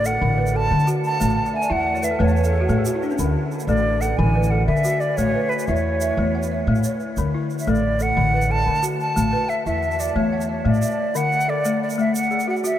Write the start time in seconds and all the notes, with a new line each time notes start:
Already playing: A1
0.05 A4 F#5, shaker
0.22 A1 D3
0.38 B4
0.47 shaker
0.55 A4 A5
0.71 D3
0.79 shaker
0.87 F#4, shaker
1.04 A5, shaker
1.20 A1 A3, shaker
1.29 A5
1.38 G#5
1.45 F#5, shaker
1.54 E5 G#5
1.62 D5, shaker
1.70 E2 E4 E5 F#5
1.78 F#5
1.86 D5
1.95 C#5, shaker
2.02 B4 E5, shaker
2.11 A4
2.19 E2 A3 B4 C#5
2.28 C#5, shaker
2.36 B4, shaker
2.44 A4, shaker
2.53 G#4
2.61 F#4
2.69 A2 A3 A4, shaker
2.78 G#4
2.85 F#4, shaker
2.95 E4
3.02 D4, shaker
3.10 C#4, shaker
3.18 D2 D3, shaker
3.52 shaker
3.60 shaker
3.67 A1 A3 A4 D5, shaker
3.77 shaker
4.01 A4 F#5, shaker
4.17 A1 D3 G#5
4.35 B4
4.43 shaker
4.50 A4 F#5
4.67 D3 E5
4.76 shaker
4.84 F#4, shaker
5.00 D5, shaker
5.17 A1 A3 C#5, shaker
5.35 B4
5.49 B4, shaker
5.59 shaker
5.66 E2 E4 C#5 E5, shaker
5.76 shaker
6.01 E5, shaker
6.17 E2 A3
6.35 F#5
6.43 shaker
6.51 E5
6.67 A2 A3
6.75 shaker
6.84 C#5, shaker
7.00 shaker
7.17 D2 D3, shaker
7.34 E4
7.50 shaker
7.59 E5, shaker
7.67 A1 A3 A4 D5
7.75 shaker
8.00 A4 F#5, shaker
8.17 A1 D3
8.34 B4
8.41 shaker
8.50 A4 A5
8.66 D3
8.75 shaker
8.83 F#4, shaker
9.00 A5, shaker
9.16 A1 A3, shaker
9.33 B4
9.49 E5, shaker
9.66 E2 E4 E5, shaker
9.83 shaker
9.91 shaker
9.99 D5 E5, shaker
10.16 E2 A3 C#5
10.33 F#5
10.41 shaker
10.49 C#5 E5
10.65 A2 A3 D5
10.74 shaker
10.82 E5, shaker
11.15 D3 F#5, shaker
11.32 shaker
11.40 shaker
11.48 A4 D5
11.65 A3, shaker
11.83 D5
11.90 shaker
11.98 A3 E5, shaker
12.15 F#5, shaker
12.31 G#4, shaker
12.40 shaker
12.48 F#4 F#5
12.56 shaker
12.64 F#4 E5, shaker